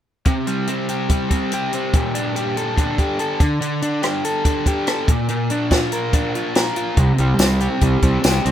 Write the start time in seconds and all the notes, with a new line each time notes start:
0.25 C3, kick, closed hi-hat
0.47 G3, closed hi-hat
0.67 C4, closed hi-hat
0.89 G4, closed hi-hat
1.09 G3, kick, closed hi-hat
1.31 C4, kick, closed hi-hat
1.52 G4, closed hi-hat
1.73 C4, closed hi-hat
1.94 A#2, kick, closed hi-hat
2.15 D4, closed hi-hat
2.36 G4, closed hi-hat
2.57 A4, closed hi-hat
2.76 D4, kick, closed hi-hat
2.98 G4, kick, closed hi-hat
3.19 A4, closed hi-hat
3.40 D3, kick, closed hi-hat
3.61 D3, closed hi-hat
3.82 D4, closed hi-hat
4.02 G4, cross-stick, closed hi-hat
4.24 A4, closed hi-hat
4.45 D4, kick, closed hi-hat
4.66 G4, kick, closed hi-hat
4.87 A4, cross-stick, closed hi-hat
5.08 A#2, kick, closed hi-hat
5.28 A#2, closed hi-hat
5.50 D4, closed hi-hat
5.71 F4, kick, snare, closed hi-hat
5.92 A#4, closed hi-hat
6.13 D4, kick, closed hi-hat
6.35 F4, closed hi-hat
6.55 A#4, snare, closed hi-hat
6.76 F4, closed hi-hat
6.97 C2 C3, kick, closed hi-hat
7.18 C2 G3, closed hi-hat
7.39 C2 C4, snare, closed hi-hat, tambourine
7.60 G4, closed hi-hat
7.81 C2 G3, kick, closed hi-hat
8.02 C2 C4, kick, closed hi-hat
8.24 C2 G4, snare, closed hi-hat, tambourine
8.45 C2 C4, closed hi-hat